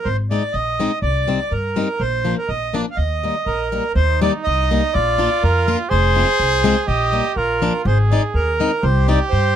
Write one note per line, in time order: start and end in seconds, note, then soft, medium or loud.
0.05 0.37 G#1 medium
0.05 0.17 C5 medium
0.30 0.42 G#3 soft
0.30 0.42 C4 soft
0.30 0.42 D#4 soft
0.30 0.55 D5 medium
0.53 0.86 A#1 medium
0.53 0.99 D#5 medium
0.80 0.91 G#3 soft
0.80 0.90 C4 soft
0.80 0.91 D#4 soft
1.02 1.34 C2 medium
1.02 1.53 D5 medium
1.28 1.39 G3 soft
1.28 1.39 C4 soft
1.28 1.39 D#4 soft
1.51 1.83 G2 medium
1.51 2.02 A#4 medium
1.76 1.87 G3 soft
1.76 1.87 C4 soft
1.76 1.88 D#4 medium
2.00 2.31 A#1 medium
2.00 2.35 C5 medium
2.25 2.36 F3 soft
2.25 2.36 A#3 soft
2.25 2.36 D4 soft
2.38 2.50 A#4 medium
2.48 2.80 A#1 medium
2.48 2.75 D#5 medium
2.73 2.85 F3 soft
2.73 2.85 A#3 soft
2.73 2.85 D4 medium
2.73 2.81 D5 medium
2.91 2.98 F5 medium
2.96 3.29 D#2 medium
2.96 3.68 D#5 medium
3.24 3.34 G3 soft
3.24 3.34 A#3 soft
3.24 3.34 D#4 medium
3.46 3.78 A#1 medium
3.46 3.92 A#4 medium
3.72 3.83 G3 medium
3.72 3.83 A#3 soft
3.72 3.83 D#4 medium
3.94 4.27 D#2 medium
3.94 4.96 D#4 medium
3.94 4.20 C5 loud
4.22 4.32 G3 medium
4.22 4.32 A#3 soft
4.22 4.33 D#4 medium
4.22 4.32 D5 medium
4.44 4.78 C2 medium
4.44 4.94 D#5 loud
4.71 4.81 G3 medium
4.71 4.81 A#3 medium
4.71 4.82 D#4 medium
4.94 5.26 A#1 medium
4.94 5.91 F4 loud
4.94 5.43 D5 loud
5.18 5.29 A#3 medium
5.18 5.29 D4 soft
5.18 5.29 F4 soft
5.43 5.74 F2 medium
5.43 5.77 A#4 medium
5.68 5.78 A#3 medium
5.68 5.78 D4 soft
5.68 5.78 F4 medium
5.89 6.22 F1 medium
5.89 6.89 G#4 loud
5.89 6.83 C5 loud
6.15 6.26 G#3 soft
6.15 6.26 C4 soft
6.15 6.27 F4 medium
6.39 6.71 C2 medium
6.64 6.75 G#3 medium
6.64 6.75 C4 medium
6.64 6.75 F4 medium
6.87 7.19 A#1 medium
6.87 7.39 G4 loud
6.87 7.33 D#5 medium
7.12 7.23 G3 soft
7.12 7.23 A#3 soft
7.12 7.23 D#4 soft
7.36 7.68 A#1 medium
7.36 7.88 F4 medium
7.36 7.82 A#4 medium
7.62 7.72 F3 medium
7.62 7.73 A#3 soft
7.62 7.73 D4 medium
7.85 8.17 G#1 loud
7.85 8.58 G#4 medium
7.85 7.98 C5 medium
8.11 8.22 G#3 medium
8.11 8.22 C4 soft
8.11 8.22 D#4 medium
8.11 8.21 D5 medium
8.34 8.66 D#2 medium
8.34 8.85 A#4 medium
8.60 8.70 G#3 medium
8.60 8.70 C4 soft
8.60 8.71 D#4 medium
8.83 9.15 C2 loud
8.83 9.56 G4 loud
8.83 9.07 C5 medium
9.08 9.18 G3 soft
9.08 9.19 C4 soft
9.08 9.19 D#4 medium
9.08 9.19 D5 medium
9.30 9.56 G2 medium
9.30 9.56 C5 medium